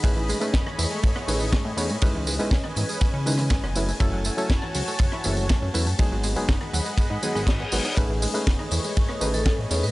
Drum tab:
RD |x---x---x---x---|x---x---x---x---|x---x---x---x---|x---x---x---x---|
HH |--o---o---o---o-|--o---o---o---o-|--o---o---o---o-|--o---o---o---o-|
TB |x-xxx-xxx-xxx-xx|x-xxx-xxx-xxx-xx|x-xxx-xxx-xxx-xx|x-xxx-xxx-xxx-xx|
SD |----or---r--o---|----or-----ror--|----or---r--o---|----or-----ror--|
BD |o---o---o---o---|o---o---o---o---|o---o---o---o---|o---o---o---o---|

RD |x---x---x---x---|
HH |--o---o---o---o-|
TB |x-xxx-xxx-xxx-xx|
SD |----or---r--o---|
BD |o---o---o---o---|